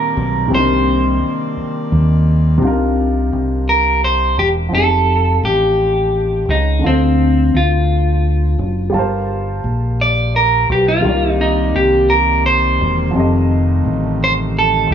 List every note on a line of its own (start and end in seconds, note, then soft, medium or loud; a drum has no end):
0.00 0.45 A#2 medium
0.00 0.49 D#3 medium
0.00 0.47 G3 medium
0.00 2.58 A#3 medium
0.00 0.46 C4 medium
0.00 2.58 C4 medium
0.00 0.47 D4 medium
0.00 0.49 D#4 medium
0.00 0.53 A#4 medium
0.00 0.54 A#4 loud
0.00 2.58 D5 medium
0.17 0.48 B1 loud
0.48 1.17 C2 loud
0.48 2.56 C3 medium
0.48 2.59 D#3 medium
0.48 2.59 G3 medium
0.48 2.57 C4 medium
0.52 2.58 D4 medium
0.52 2.59 D#4 medium
0.52 1.89 C5 medium
0.56 2.60 A#4 medium
1.57 muted fingered electric bass stroke soft
1.92 2.58 D#2 medium
2.58 4.66 C3 medium
2.58 4.67 C4 medium
2.58 4.68 D4 medium
2.62 3.28 C2 loud
2.62 4.69 D#4 medium
2.62 4.70 F4 medium
2.67 4.71 A#4 medium
3.33 4.34 C2 medium
3.69 4.01 A#4 medium
4.04 4.39 C5 medium
4.38 4.69 E1 medium
4.38 4.48 G4 medium
4.69 5.38 F1 loud
4.69 6.77 F3 medium
4.69 6.78 C4 medium
4.73 6.79 D#4 medium
4.73 6.80 G4 medium
4.73 5.40 A4 medium
4.78 4.81 G#4 soft
4.84 6.84 A4 medium
5.43 6.44 A1 medium
5.43 6.52 G4 loud
6.49 6.80 C#2 medium
6.49 6.85 D#4 medium
6.79 8.88 D3 medium
6.79 8.89 D4 medium
6.84 7.49 D2 loud
6.84 7.57 C4 medium
6.84 8.90 F4 medium
6.84 8.91 A4 medium
6.88 8.92 C5 medium
7.54 8.55 D2 medium
7.54 9.26 F4 medium
8.59 8.90 F#1 medium
8.90 9.59 G1 loud
8.90 10.98 G3 medium
8.90 10.99 F4 medium
8.94 11.01 A#4 medium
8.94 11.00 A5 medium
8.99 11.02 C5 medium
9.64 10.65 A#1 medium
10.01 10.36 D5 medium
10.36 10.68 A#4 medium
10.70 11.01 B1 medium
10.70 10.88 G4 medium
10.88 11.30 F4 medium
11.01 11.70 C2 loud
11.01 13.09 C3 medium
11.01 14.94 C3 medium
11.01 14.94 D#3 medium
11.01 13.09 G3 medium
11.01 14.94 G3 medium
11.01 13.12 A#3 medium
11.01 13.10 D#4 medium
11.01 13.12 D5 medium
11.06 13.11 F4 medium
11.06 13.12 A#4 medium
11.06 13.13 D5 medium
11.30 11.41 D#4 medium
11.41 11.76 D#4 medium
11.75 12.76 C2 medium
11.75 12.11 G4 medium
12.10 12.46 A#4 medium
12.46 13.11 C5 medium
12.81 13.11 E1 medium
13.11 14.94 F3 medium
13.11 14.94 A3 medium
13.11 14.94 C4 medium
13.11 14.94 D#4 medium
13.15 13.81 F1 loud
13.15 14.94 G4 medium
13.15 14.94 A4 medium
13.20 14.94 D#5 medium
13.85 14.86 A1 medium
14.24 14.33 C5 medium
14.59 14.89 A4 medium
14.90 14.94 C#2 medium